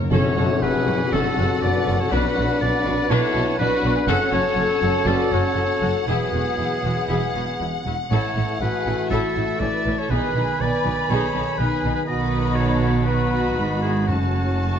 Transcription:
Already playing: viola section A#4, violin section C#5
0.03 timpani F#2
0.11 double bass section F#1, cello section F#2, trombone section F#3 C#4, trumpet section A3, viola section C#4 A4, violin section A4 F#5, french horn section A4, oboe C#5, clarinet C#5, tam-tam
0.36 double bass section F#1, cello section F#2, viola section C#4 F#4
0.62 double bass section F#1, cello section F#2, viola section C#4, violin section G#4, french horn section G#4, oboe B4, clarinet B4
0.87 double bass section F#1, cello section F#2, viola section C#4 F#4
1.11 double bass section F#1, cello section F#2, trombone section C#3 F#3, viola section C#4 A4, french horn section F#4, violin section F#4, trumpet section A4, oboe A4, clarinet A4
1.38 double bass section F#1, cello section F#2, viola section C#4 F#4
1.62 double bass section F#1, cello section F#2, viola section C#4, violin section B4, oboe D5, clarinet D5
1.87 double bass section F#1, cello section F#2, viola section C#4 F#4
1.99 violin section A4, oboe C#5, clarinet C#5
2.11 double bass section B1, cello section B2, trombone section F#3 D4, french horn section D4, viola section D4 B4, violin section F#4, oboe B4, trumpet section B4, clarinet B4
2.37 double bass section B1, cello section B2, viola section D4 F#4
2.60 double bass section B1, cello section B2, trombone section F#3 D4, viola section D4, violin section B4, trumpet section B4, oboe D5, clarinet D5
2.85 double bass section B1, cello section B2, viola section D4 F#4
3.09 double bass section B1, cello section B2, viola section D4 B4, french horn section E4, violin section A4, oboe C#5, clarinet C#5
3.34 double bass section B1, cello section B2, viola section D4 F#4
3.59 double bass section B1, cello section B2, trombone section F#3 D4, french horn section D4, viola section D4, violin section F#4, oboe B4, trumpet section B4, clarinet B4
3.83 double bass section B1, cello section B2, viola section D4 F#4
3.95 violin section G#4, oboe B4, clarinet B4
4.07 double bass section F#1, cello section F#2, trombone section F#3 C#4, french horn section C#4, viola section C#4 A4, trumpet section A4, violin section C#5 F#5, oboe F#5, clarinet F#5
4.32 double bass section F#1, cello section F#2, viola section C#4 F#4, violin section A4, oboe C#5, clarinet C#5
4.57 double bass section F#1, cello section F#2, viola section C#4, french horn section A4
4.81 double bass section F#1, cello section F#2, viola section C#4 F#4
5.06 double bass section F#1, cello section F#2, viola section C#4 A4, french horn section F#4, violin section B4, oboe D5, clarinet D5
5.31 double bass section F#1, cello section F#2, viola section C#4 F#4, violin section A4, clarinet C#5, oboe C#5
5.56 double bass section F#1, cello section F#2, viola section C#4, french horn section A4
5.81 double bass section F#1, cello section F#2, viola section C#4 F#4
6.07 double bass section E1, cello section E2, trombone section F#3 B3, violin section E4, viola section E4 G#4, trumpet section G#4, oboe G#4, clarinet G#4, french horn section B4
6.32 double bass section E1, cello section E2, viola section E4 F#4
6.59 double bass section E1, cello section E2, viola section E4
6.84 double bass section E1, cello section E2, viola section E4 F#4
7.09 double bass section E1, cello section E2, viola section E4 G#4
7.35 double bass section E1, cello section E2, viola section E4 F#4
7.60 double bass section E1, cello section E2, viola section E4
7.86 double bass section E1, cello section E2, viola section E4 F#4
8.11 double bass section A1, cello section A2, trombone section E3 A3, trumpet section A3, french horn section E4, viola section E4 A4, violin section A4, oboe C#5, clarinet C#5
8.37 double bass section A1, cello section A2, viola section E4
8.61 double bass section A1, cello section A2, viola section C#4 E4, french horn section F#4, violin section G#4, oboe B4, clarinet B4
8.86 double bass section A1, cello section A2, viola section E4
9.10 double bass section A1, cello section A2, violin section E4 E5, viola section E4 A4, oboe A4, clarinet A4
9.35 double bass section A1, cello section A2, viola section E4
9.60 double bass section A1, cello section A2, viola section C#4 E4, french horn section E4, violin section B4, oboe D5, clarinet D5
9.86 double bass section A1, cello section A2, viola section E4
9.98 violin section A4, oboe C#5, clarinet C#5
10.10 double bass section B1, cello section B2, trombone section D#3 B3, viola section D#4 G#4, violin section G#4 B5, oboe B4, clarinet B4, french horn section B4, trumpet section G#5
10.35 double bass section B1, cello section B2, viola section D#4
10.60 double bass section B1, cello section B2, viola section B3 D#4, violin section B4, oboe D5, clarinet D5
10.85 double bass section B1, cello section B2, viola section D#4
11.09 double bass section B1, cello section B2, viola section D#4 G#4, violin section A4, oboe C#5, clarinet C#5
11.34 double bass section B1, cello section B2, viola section D#4
11.58 double bass section B1, cello section B2, viola section B3 D#4, french horn section D#4, violin section G#4, oboe B4, clarinet B4
11.83 double bass section B1, cello section B2, viola section D#4
11.95 violin section G#4, oboe B4, clarinet B4
12.06 double bass section B1, cello section B2, viola section D#4 F#4, trumpet section F#4, french horn section F#4, violin section B4 B5, oboe D#5, clarinet D#5
12.56 french horn section F#4, violin section A4, oboe C#5, clarinet C#5
13.05 viola section D#4 F#4, violin section F#4 B5, french horn section F#4, oboe B4, clarinet B4
13.57 double bass section G#1, cello section G#2, french horn section D#4
13.81 violin section E4, oboe G#4, clarinet G#4
14.08 double bass section F#1, cello section F#2, timpani F#2, trombone section C#3 A3, violin section C#4 A5, french horn section C#4, viola section C#4 F#4, oboe F#4, clarinet F#4
14.60 flute C#6

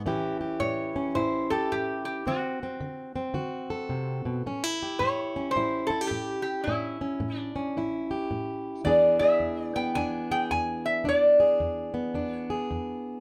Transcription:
0.06 steel-string acoustic guitar A2 E3 C#4 E4 G4
0.41 steel-string acoustic guitar G4
0.60 steel-string acoustic guitar A2, resonator guitar played with a steel bar C#5
0.96 steel-string acoustic guitar C#4
1.15 steel-string acoustic guitar A2 E4, resonator guitar played with a steel bar C5
1.50 steel-string acoustic guitar G4, resonator guitar played with a steel bar A4
1.72 steel-string acoustic guitar A2, resonator guitar played with a steel bar G4
2.05 resonator guitar played with a steel bar G4
2.27 steel-string acoustic guitar D3 C4, resonator guitar played with a steel bar F#4
2.63 steel-string acoustic guitar C4
2.81 steel-string acoustic guitar D3
3.16 steel-string acoustic guitar C4
3.34 steel-string acoustic guitar D3 F#4
3.70 steel-string acoustic guitar A4
3.89 steel-string acoustic guitar C3
4.25 steel-string acoustic guitar B2
4.46 steel-string acoustic guitar A2 C#4
4.64 steel-string acoustic guitar E4
4.83 steel-string acoustic guitar G4
4.99 steel-string acoustic guitar A2, resonator guitar played with a steel bar C#5
5.36 steel-string acoustic guitar C#4
5.51 resonator guitar played with a steel bar C5
5.56 steel-string acoustic guitar A2 E4
5.87 steel-string acoustic guitar E4, resonator guitar played with a steel bar A4
6.01 steel-string acoustic guitar G4
6.07 steel-string acoustic guitar A2, resonator guitar played with a steel bar G4
6.42 resonator guitar played with a steel bar G4
6.64 steel-string acoustic guitar A2, resonator guitar played with a steel bar E4
6.68 steel-string acoustic guitar C#4
7.01 steel-string acoustic guitar C#4
7.20 steel-string acoustic guitar A2
7.38 resonator guitar played with a steel bar D4
7.56 steel-string acoustic guitar C#4
7.77 steel-string acoustic guitar A2 E4
8.11 steel-string acoustic guitar G4
8.31 steel-string acoustic guitar A2
8.84 steel-string acoustic guitar E2 E3 B3 D4 G#4, resonator guitar played with a steel bar D5
9.19 steel-string acoustic guitar G#4, resonator guitar played with a steel bar E5
9.40 steel-string acoustic guitar E2
9.64 resonator guitar played with a steel bar D5
9.76 steel-string acoustic guitar B3, resonator guitar played with a steel bar G5
9.95 steel-string acoustic guitar E2 D4, resonator guitar played with a steel bar G#5
10.31 steel-string acoustic guitar G#4, resonator guitar played with a steel bar G5
10.51 steel-string acoustic guitar E2, resonator guitar played with a steel bar G#5
10.86 resonator guitar played with a steel bar E5
11.04 steel-string acoustic guitar E2 D4
11.09 resonator guitar played with a steel bar D5
11.40 steel-string acoustic guitar G#4
11.60 steel-string acoustic guitar E2
11.94 steel-string acoustic guitar B3
12.14 steel-string acoustic guitar E2 D4
12.33 resonator guitar played with a steel bar C#5
12.50 steel-string acoustic guitar G#4
12.71 steel-string acoustic guitar E2

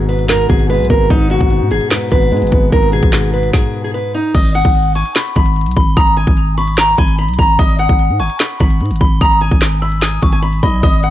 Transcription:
Already playing: 808-style bass G#1, grand piano G#2 B2 G#3 B3
0.09 steel-string acoustic guitar B4, open hi-hat
0.19 closed hi-hat
0.29 grand piano G#2, steel-string acoustic guitar A#4, snare, clap, closed hi-hat
0.40 closed hi-hat
0.49 808-style bass G#1, grand piano B2, steel-string acoustic guitar G#4, kick, closed hi-hat
0.59 closed hi-hat
0.69 grand piano G#3, steel-string acoustic guitar B4, closed hi-hat
0.75 closed hi-hat
0.80 808-style bass B1, closed hi-hat
0.85 closed hi-hat
0.90 808-style bass G#1, grand piano B3, steel-string acoustic guitar A#4, kick, closed hi-hat
1.10 808-style bass G#1, grand piano G#2, steel-string acoustic guitar D#4, kick, closed hi-hat
1.21 closed hi-hat
1.30 grand piano B2, steel-string acoustic guitar F#4, closed hi-hat
1.41 808-style bass G#1, kick, closed hi-hat
1.50 grand piano G#2, closed hi-hat
1.61 808-style bass G#2
1.71 808-style bass G#1, steel-string acoustic guitar G#4, closed hi-hat
1.81 closed hi-hat
1.91 grand piano G#2, steel-string acoustic guitar B4, snare, clap, closed hi-hat
2.02 closed hi-hat
2.11 808-style bass G#1, grand piano B2, steel-string acoustic guitar B4, kick, closed hi-hat
2.21 closed hi-hat
2.32 808-style bass G#2, grand piano G#3, closed hi-hat
2.37 closed hi-hat
2.42 808-style bass G#1, closed hi-hat
2.47 closed hi-hat
2.52 808-style bass G#1, grand piano B3, kick, closed hi-hat
2.72 808-style bass G#1, grand piano G#2, steel-string acoustic guitar A#4, kick, closed hi-hat
2.83 closed hi-hat
2.92 grand piano B2, steel-string acoustic guitar G#4, closed hi-hat
3.03 808-style bass G#1, kick, closed hi-hat
3.13 grand piano G#2, snare, clap, closed hi-hat
3.33 steel-string acoustic guitar B4, open hi-hat
3.43 closed hi-hat
3.53 steel-string acoustic guitar G#4, kick, snare
3.84 steel-string acoustic guitar G#4
3.94 steel-string acoustic guitar B4
4.14 steel-string acoustic guitar D#4
4.35 808-style bass G#1, steel-string acoustic guitar D#5, synth bell D#6, kick, closed hi-hat, crash
4.45 closed hi-hat
4.54 steel-string acoustic guitar F#5, closed hi-hat
4.65 808-style bass G#1, kick, closed hi-hat
4.75 closed hi-hat
4.95 steel-string acoustic guitar G#5, synth bell C#6, closed hi-hat
5.05 closed hi-hat
5.16 steel-string acoustic guitar B5, snare, clap, closed hi-hat
5.26 closed hi-hat
5.35 808-style bass G#1, steel-string acoustic guitar B5, kick, closed hi-hat
5.46 closed hi-hat
5.56 closed hi-hat
5.61 closed hi-hat
5.66 808-style bass B1, closed hi-hat
5.71 closed hi-hat
5.76 808-style bass G#1, synth bell B5, kick, closed hi-hat
5.97 808-style bass G#1, steel-string acoustic guitar A#5, synth bell D#6, kick, closed hi-hat
6.07 closed hi-hat
6.17 steel-string acoustic guitar G#5, closed hi-hat
6.27 808-style bass G#1, kick, closed hi-hat
6.37 closed hi-hat
6.58 steel-string acoustic guitar B5, synth bell C#6, open hi-hat
6.68 closed hi-hat
6.78 steel-string acoustic guitar A#5, snare, clap, closed hi-hat
6.88 closed hi-hat
6.98 808-style bass G#1, steel-string acoustic guitar G#5, synth bell B5, kick, closed hi-hat
7.08 closed hi-hat
7.18 steel-string acoustic guitar B5, closed hi-hat
7.23 closed hi-hat
7.28 808-style bass B1, closed hi-hat
7.34 closed hi-hat
7.39 808-style bass G#1, steel-string acoustic guitar A#5, kick, closed hi-hat
7.59 808-style bass G#1, steel-string acoustic guitar D#5, synth bell D#6, kick, closed hi-hat
7.69 closed hi-hat
7.79 steel-string acoustic guitar F#5, closed hi-hat
7.89 808-style bass G#1, kick, closed hi-hat
7.99 closed hi-hat
8.10 808-style bass G#2
8.20 808-style bass G#1, steel-string acoustic guitar G#5, synth bell C#6, closed hi-hat
8.30 closed hi-hat
8.40 steel-string acoustic guitar B5, snare, clap, closed hi-hat
8.50 closed hi-hat
8.60 808-style bass G#1, steel-string acoustic guitar B5, kick, closed hi-hat
8.70 closed hi-hat
8.81 808-style bass G#2, closed hi-hat
8.86 closed hi-hat
8.91 808-style bass G#1, closed hi-hat
8.96 closed hi-hat
9.01 808-style bass G#1, synth bell B5, kick, closed hi-hat
9.21 808-style bass G#1, steel-string acoustic guitar A#5, synth bell D#6, kick, closed hi-hat
9.31 closed hi-hat
9.41 steel-string acoustic guitar G#5, closed hi-hat
9.51 808-style bass G#1, kick, closed hi-hat
9.61 snare, clap, closed hi-hat
9.82 steel-string acoustic guitar B5, synth bell E6, open hi-hat
9.92 closed hi-hat
10.02 steel-string acoustic guitar G#5, synth bell D#6, snare, clap, closed hi-hat
10.12 closed hi-hat
10.22 808-style bass G#1, synth bell C#6, kick, closed hi-hat
10.32 steel-string acoustic guitar G#5, closed hi-hat
10.42 steel-string acoustic guitar B5, closed hi-hat
10.53 closed hi-hat
10.63 808-style bass B1, steel-string acoustic guitar D#5, synth bell B5, kick, closed hi-hat
10.83 808-style bass G#1, steel-string acoustic guitar D#5, synth bell D#6, kick, closed hi-hat
10.94 closed hi-hat
11.03 steel-string acoustic guitar F#5, closed hi-hat

